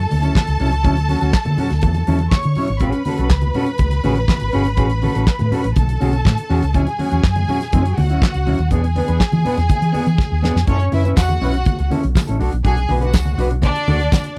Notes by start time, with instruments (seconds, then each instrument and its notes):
Already playing: string section A4 A5
0.10 fingered electric bass D2, muted clean electric guitar stroke, open hi-hat, high conga
0.22 clean electric guitar F#3 C#4 E4, closed hi-hat
0.35 kick, snare, clap, muted conga, high conga
0.47 fingered electric bass C#2, muted clean electric guitar stroke, closed hi-hat
0.60 fingered electric bass C2, clean electric guitar F#3 C#4 E4, open hi-hat, low conga
0.72 fingered electric bass C#2, muted clean electric guitar stroke, closed hi-hat
0.84 fingered electric bass D2, clean electric guitar F#3 C#4 E4, kick, closed hi-hat, low conga
0.96 muted clean electric guitar stroke, closed hi-hat
1.09 clean electric guitar F#3 C#4 F#4, open hi-hat, muted conga, high conga
1.21 fingered electric bass D2, clean electric guitar F#3 C#4 F#4, closed hi-hat
1.33 muted clean electric guitar stroke, kick, snare, clap
1.45 fingered electric bass D3, muted clean electric guitar stroke, closed hi-hat, high conga
1.57 clean electric guitar F#3 C#4 F#4, open hi-hat, low conga
1.70 fingered electric bass D2, muted clean electric guitar stroke, snare, closed hi-hat
1.81 fingered electric bass E2, muted clean electric guitar stroke, kick, closed hi-hat, muted conga, high conga
1.94 muted clean electric guitar stroke, closed hi-hat
2.07 fingered electric bass E2, clean electric guitar F#3 C#4 E4, open hi-hat, high conga
2.19 muted clean electric guitar stroke, closed hi-hat
2.31 string section C#5 C#6, kick, snare, clap, muted conga, high conga
2.43 fingered electric bass D3, muted clean electric guitar stroke, closed hi-hat
2.55 clean electric guitar F#3 C#4 E4, open hi-hat, low conga
2.67 fingered electric bass G#1, muted clean electric guitar stroke, closed hi-hat
2.80 fingered electric bass A1, clean electric guitar C#4 F#4 G#4, string section B4 B5, kick, closed hi-hat, muted conga, low conga
2.92 muted clean electric guitar stroke, closed hi-hat
3.05 clean electric guitar C#4 F#4 A4, open hi-hat, muted conga, high conga
3.18 fingered electric bass B1, clean electric guitar C#4 F#4 A4, closed hi-hat
3.30 fingered electric bass C#2, kick, snare, clap, muted conga
3.41 muted clean electric guitar stroke, closed hi-hat, high conga
3.54 clean electric guitar C#4 F#4 A4, open hi-hat, muted conga, low conga
3.66 muted clean electric guitar stroke, closed hi-hat
3.78 fingered electric bass C#2, muted clean electric guitar stroke, kick, closed hi-hat, high conga
3.91 muted clean electric guitar stroke, closed hi-hat
4.04 fingered electric bass A1, clean electric guitar C#4 F#4 G#4, open hi-hat, muted conga, high conga
4.16 muted clean electric guitar stroke, closed hi-hat
4.28 kick, snare, clap, muted conga, high conga
4.40 fingered electric bass G#1, muted clean electric guitar stroke, closed hi-hat
4.52 fingered electric bass G1, clean electric guitar C#4 F#4 G#4, open hi-hat, low conga
4.65 fingered electric bass G#1, muted clean electric guitar stroke, closed hi-hat
4.77 fingered electric bass A1, clean electric guitar C#4 F#4 G#4, kick, closed hi-hat, muted conga, low conga
4.89 muted clean electric guitar stroke, closed hi-hat
5.02 clean electric guitar C#4 F#4 A4, open hi-hat, muted conga, high conga
5.14 fingered electric bass A1, clean electric guitar C#4 F#4 A4, closed hi-hat
5.27 muted clean electric guitar stroke, muted fingered electric bass stroke, kick, snare, clap, muted conga
5.39 fingered electric bass A2, muted clean electric guitar stroke, closed hi-hat, high conga
5.52 clean electric guitar C#4 F#4 A4, open hi-hat, muted conga, low conga
5.63 fingered electric bass A1, muted clean electric guitar stroke, closed hi-hat
5.76 fingered electric bass B1, string section A4 A5, muted clean electric guitar stroke, kick, closed hi-hat, muted conga, high conga
5.88 muted clean electric guitar stroke, closed hi-hat
6.00 fingered electric bass B1, clean electric guitar C#4 F#4 G#4, open hi-hat, muted conga, high conga
6.13 muted clean electric guitar stroke, closed hi-hat
6.25 fingered electric bass A2, kick, snare, clap, muted conga, high conga
6.37 muted clean electric guitar stroke, closed hi-hat
6.50 fingered electric bass E2, clean electric guitar C#4 F#4 G#4, open hi-hat, muted conga, low conga
6.62 fingered electric bass C#2, muted clean electric guitar stroke, closed hi-hat
6.74 fingered electric bass D2, clean electric guitar F#3 C#4 E4, string section G#4 G#5, kick, closed hi-hat, low conga
6.86 muted clean electric guitar stroke, closed hi-hat
6.99 clean electric guitar F#3 C#4 F#4, open hi-hat, high conga
7.10 fingered electric bass E2, clean electric guitar F#3 C#4 F#4, closed hi-hat
7.23 fingered electric bass F#2, kick, snare, clap
7.35 muted clean electric guitar stroke, closed hi-hat, high conga
7.48 clean electric guitar F#3 C#4 F#4, open hi-hat, muted conga, low conga
7.61 muted clean electric guitar stroke, snare, closed hi-hat
7.72 fingered electric bass F#2, clean electric guitar F#3 C#4 E4, kick, closed hi-hat, muted conga, high conga
7.85 muted clean electric guitar stroke, closed hi-hat
7.97 fingered electric bass D2, string section F#4 F#5, muted clean electric guitar stroke, open hi-hat, muted conga, high conga
8.10 clean electric guitar F#3 C#4 E4, closed hi-hat
8.22 kick, snare, clap, muted conga, high conga
8.34 fingered electric bass C#2, muted clean electric guitar stroke, closed hi-hat
8.46 fingered electric bass D2, clean electric guitar F#3 C#4 E4, open hi-hat, low conga
8.59 fingered electric bass D#2, muted clean electric guitar stroke, closed hi-hat
8.71 fingered electric bass E2, clean electric guitar B3 D4 G#4, string section G#4 G#5, kick, closed hi-hat, low conga
8.84 muted clean electric guitar stroke, closed hi-hat
8.96 clean electric guitar B3 D4 B4, open hi-hat, muted conga, high conga
9.08 fingered electric bass E2, clean electric guitar B3 D4 B4, closed hi-hat
9.20 muted clean electric guitar stroke, kick, snare, clap, muted conga
9.32 fingered electric bass E3, muted clean electric guitar stroke, closed hi-hat, high conga
9.45 clean electric guitar B3 D4 B4, open hi-hat, muted conga, low conga
9.57 fingered electric bass E2, muted clean electric guitar stroke, snare, closed hi-hat
9.69 muted clean electric guitar stroke, kick, closed hi-hat, muted conga, high conga
9.81 fingered electric bass E3, muted clean electric guitar stroke, closed hi-hat
9.93 clean electric guitar B3 D4 G#4, open hi-hat, high conga
10.05 fingered electric bass E3, muted clean electric guitar stroke, closed hi-hat
10.18 kick, snare, muted conga, high conga
10.31 fingered electric bass D#2, muted clean electric guitar stroke
10.42 fingered electric bass E2, clean electric guitar B3 D4 G#4, snare, muted conga, low conga
10.55 fingered electric bass F2, muted clean electric guitar stroke, snare
10.67 fingered electric bass F#2, clean electric guitar C#4 E4 A4, string section C#4 C#5, kick, closed hi-hat, muted conga, low conga
10.80 muted clean electric guitar stroke, closed hi-hat
10.92 fingered electric bass F#2, clean electric guitar C#4 E4 B4, string section E4 E5, open hi-hat, muted conga, high conga
11.04 clean electric guitar C#4 E4 B4, closed hi-hat, high conga
11.16 fingered electric bass E2, string section F#4 F#5, kick, snare, clap, tambourine, muted conga
11.29 muted clean electric guitar stroke, closed hi-hat, high conga
11.42 fingered electric bass B1, clean electric guitar C#4 E4 B4, open hi-hat, muted conga, low conga
11.54 muted clean electric guitar stroke, closed hi-hat
11.65 muted clean electric guitar stroke, kick, closed hi-hat, high conga
11.79 fingered electric bass C#2, muted clean electric guitar stroke, closed hi-hat
11.90 clean electric guitar C#4 E4 A4, open hi-hat, muted conga, high conga
12.03 fingered electric bass B1, muted clean electric guitar stroke, closed hi-hat
12.15 muted clean electric guitar stroke, kick, snare, clap, tambourine, muted conga, high conga
12.27 fingered electric bass A1, clean electric guitar C#4 E4 A4, closed hi-hat
12.39 fingered electric bass B1, clean electric guitar D4 F#4 A4, open hi-hat, muted conga
12.52 fingered electric bass A#1, muted clean electric guitar stroke, closed hi-hat
12.64 fingered electric bass B1, clean electric guitar D4 F#4 A4, string section G#4 G#5, kick, closed hi-hat, low conga
12.77 muted clean electric guitar stroke, closed hi-hat
12.89 fingered electric bass B1, clean electric guitar D4 F#4 B4, open hi-hat, high conga
13.01 clean electric guitar D4 F#4 B4, string section F#4 F#5, closed hi-hat, high conga
13.13 fingered electric bass C#2, muted clean electric guitar stroke, kick, snare, clap, tambourine, muted conga
13.25 muted clean electric guitar stroke, closed hi-hat, high conga
13.38 fingered electric bass B1, clean electric guitar D4 F#4 B4, open hi-hat, low conga
13.51 muted clean electric guitar stroke, closed hi-hat
13.62 string section D4 D5, muted clean electric guitar stroke, kick, closed hi-hat, muted conga, high conga
13.75 muted clean electric guitar stroke, closed hi-hat
13.88 fingered electric bass D2, clean electric guitar D4 F#4 A4, open hi-hat, high conga
14.00 muted clean electric guitar stroke, closed hi-hat
14.12 kick, snare, clap, tambourine, muted conga, high conga
14.24 muted clean electric guitar stroke, closed hi-hat